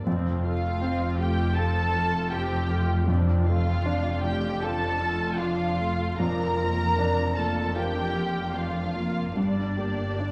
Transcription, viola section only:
0.06 F3 C4
0.44 A3 F4
0.82 F3 C4
1.19 A3 F4
1.57 F3 C4
1.95 A3 F4
2.33 F3 C4
2.70 A3 F4
3.07 F3 D4
3.47 A3 F4
3.85 F3 D4
4.23 A3 F4
4.61 F3 D4
5.01 A3 F4
5.38 F3 D4
5.79 A3 F4
6.18 F3 D4
6.56 A#3 F4
6.96 F3 D4
7.35 A#3 F4
7.75 F3 D4
8.14 A#3 F4
8.54 F3 D4
8.94 A#3 F4
9.36 G3 D4
9.77 A#3 G4
10.19 G3 D4

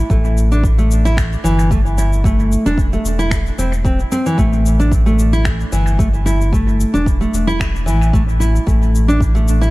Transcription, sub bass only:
0.10 A1
1.44 G1
2.66 E1
3.04 E1
3.58 E1
4.38 A1
5.72 G1
6.94 E1
7.33 E1
7.87 A1
8.67 A1

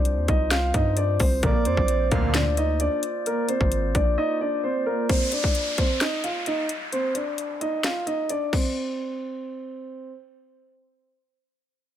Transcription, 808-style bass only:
Already playing: C2
0.17 D#2
0.28 C2
0.74 G2
1.20 C2
1.43 A#1
1.66 F2
1.77 A#1
2.12 D2
3.61 G#1
3.95 A#1

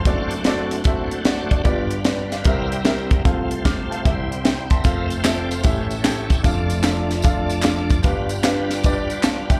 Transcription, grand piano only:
Already playing: A5 C6
0.06 F#1 F#2 C4 F#4 A4 D5
0.46 C4 F#4 A4 D5
0.85 C4 F#4 A4 E5
1.26 D5 F#5
1.52 D5
1.65 G1 G2 B3 F4 G4 D5
2.06 B4 D5
2.32 D5 F5
2.45 C2 C3 C4 G4 A#4 E5
2.85 C4 G4 A#4 E5
3.25 C2 C3 C4 F4 A4 F5
3.65 D6 F6
3.91 F5 A5
4.04 C2 C3 C4 E4 G4 E5
4.44 E5 G5
4.71 A5 C6
4.84 F1 F2 C4 F4 A4 F5
5.24 C4 F4 A4 E5
5.64 A1 A2 C#4 G4 A4 E5
6.03 C#4 G4 A4 G5
6.43 F1 F2 D4 F4 A4 F5
6.83 D4 F4 A4 F5
7.24 D4 F4 A4 F5
7.63 D4 F4 A4 F5
8.03 G1 G2 D4 G4 B4 F5
8.43 D4 G4 B4 F5
8.85 D4 G4 B4 D5
9.25 F5 A5
9.50 E5 G5

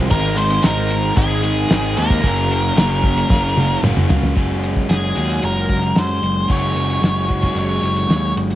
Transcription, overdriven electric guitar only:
Already playing: G#3
0.09 G#2 D#3 G#3 C4 D#4
0.36 G#3 C4 D#4
0.62 D#3 G#3 C4 D#4
1.16 G#2 D#3 G#3 C4 D#4
1.42 G#3 C4 D#4
1.69 D#3 G#3 C4 D#4
1.97 G#3 C4 D#4
2.21 F#2 C#3 F#3 A#3 C#4
2.49 F#3 A#3 C#4
2.75 C#3 F#3 A#3 C#4
3.28 F#2 C#3 F#3 A#3 C#4
3.55 F#3 A#3 C#4
3.82 C#3 F#3 A#3 C#4
4.08 F#3 A#3 C#4
4.35 F#3 G#3 C#4 F#4
5.15 F#3 G#3 C#4 F#4
6.48 F#3 G#3 C#4 F#4
7.28 F#3 G#3 C#4 F#4

